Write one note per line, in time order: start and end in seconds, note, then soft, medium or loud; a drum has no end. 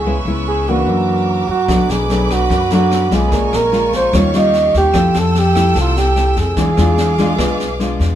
0.00 0.21 G#4 medium
0.00 1.65 E5 medium
0.05 0.24 C#2 medium
0.05 0.86 C#3 medium
0.05 0.18 G#3 medium
0.05 0.18 B3 medium
0.05 0.19 E4 medium
0.05 0.86 B4 medium
0.05 0.87 C#6 medium
0.25 0.83 C#2 medium
0.25 0.64 G#3 medium
0.25 0.64 B3 medium
0.25 0.64 E4 medium
0.48 0.71 G#4 medium
0.68 1.46 E3 medium
0.68 1.46 A#3 medium
0.68 1.46 D4 medium
0.68 1.49 F#4 medium
0.87 1.44 F#2 medium
0.87 1.67 F#2 soft
0.87 1.69 A#4 medium
0.87 3.30 D6 medium
1.48 1.70 F#2 medium
1.48 1.93 F#4 medium
1.68 1.88 B1 medium
1.68 2.48 B2 medium
1.68 2.06 F#3 soft
1.68 2.06 A3 medium
1.68 2.06 D4 medium
1.68 3.30 B4 medium
1.68 3.30 B5 medium
1.68 kick medium
1.68 cross-stick medium
1.68 snare soft
1.89 2.46 B1 medium
1.89 2.34 G#4 medium
1.89 snare soft
2.10 2.50 F#3 medium
2.10 2.50 A3 soft
2.10 2.50 D4 medium
2.10 snare soft
2.30 2.72 F#4 medium
2.30 kick soft
2.30 cross-stick medium
2.30 snare soft
2.50 3.07 F#2 medium
2.50 3.30 F#2 soft
2.50 kick medium
2.50 snare soft
2.70 3.08 F#3 medium
2.70 3.08 A3 medium
2.70 3.09 D4 medium
2.70 3.16 F#4 medium
2.70 snare soft
2.91 cross-stick soft
2.91 snare soft
3.11 3.32 B1 medium
3.11 3.69 G#3 medium
3.11 3.69 C#4 medium
3.11 3.69 F4 medium
3.11 3.57 G#4 medium
3.11 kick soft
3.11 snare soft
3.32 3.51 A#1 medium
3.32 4.11 A#2 medium
3.32 4.13 A#4 medium
3.32 4.13 G#5 medium
3.32 4.93 C#6 medium
3.32 kick medium
3.32 snare soft
3.53 4.09 A#1 medium
3.53 3.94 A#4 medium
3.53 cross-stick medium
3.53 snare soft
3.72 4.11 G#3 medium
3.72 4.11 C#4 medium
3.72 4.11 F4 medium
3.72 snare soft
3.93 4.17 C5 medium
3.93 kick soft
3.93 snare soft
4.13 4.70 D#2 loud
4.13 4.93 D#3 soft
4.13 4.31 G3 soft
4.13 4.31 C#4 soft
4.13 4.31 F4 medium
4.13 4.94 G4 medium
4.13 4.38 C#5 medium
4.13 4.94 F5 medium
4.13 kick medium
4.13 cross-stick medium
4.13 snare soft
4.33 4.91 G3 medium
4.33 4.92 C#4 medium
4.33 4.92 F4 medium
4.33 4.76 D#5 medium
4.33 snare soft
4.53 snare soft
4.74 4.94 D#2 medium
4.74 5.20 G4 medium
4.74 kick soft
4.74 snare soft
4.93 5.13 F2 medium
4.93 5.74 F3 medium
4.93 5.35 A3 medium
4.93 5.35 E4 medium
4.93 5.35 G4 medium
4.93 6.56 A4 medium
4.93 6.56 G5 medium
4.93 6.56 E6 medium
4.93 kick medium
4.93 cross-stick medium
4.93 snare soft
5.14 5.72 F2 loud
5.14 snare soft
5.19 5.41 A4 medium
5.35 snare soft
5.39 5.78 G4 medium
5.55 6.13 A3 medium
5.55 6.14 E4 medium
5.55 6.14 G4 medium
5.55 kick soft
5.55 cross-stick medium
5.55 snare soft
5.76 6.33 C2 medium
5.76 6.56 C3 medium
5.76 kick medium
5.76 snare soft
5.80 6.00 F4 medium
5.97 6.38 G4 medium
5.97 snare soft
6.16 6.56 A3 medium
6.16 6.56 E4 soft
6.16 6.56 G4 soft
6.16 cross-stick soft
6.16 snare soft
6.36 6.57 F2 medium
6.36 7.97 G#4 medium
6.36 kick soft
6.36 snare soft
6.56 6.76 E2 medium
6.56 7.36 E3 medium
6.56 6.69 G#3 soft
6.56 6.69 D4 medium
6.56 6.70 F4 medium
6.56 8.15 G#4 medium
6.56 8.15 F5 medium
6.56 8.15 D6 medium
6.56 kick medium
6.56 snare soft
6.77 7.34 E2 medium
6.77 7.15 G#3 medium
6.77 7.15 D4 medium
6.77 7.16 F4 medium
6.77 cross-stick medium
6.77 snare soft
6.98 snare soft
7.18 7.36 G#3 medium
7.18 7.36 D4 medium
7.18 7.36 F4 medium
7.18 kick soft
7.18 snare soft
7.38 7.96 B1 medium
7.38 8.15 B2 soft
7.38 7.64 G#3 medium
7.38 7.65 D4 soft
7.38 7.65 F4 medium
7.38 kick medium
7.38 cross-stick medium
7.38 snare soft
7.60 snare soft
7.80 8.15 G#3 medium
7.80 8.15 D4 soft
7.80 8.15 F4 medium
7.80 snare soft
7.99 8.15 E2 medium
7.99 kick soft
7.99 snare soft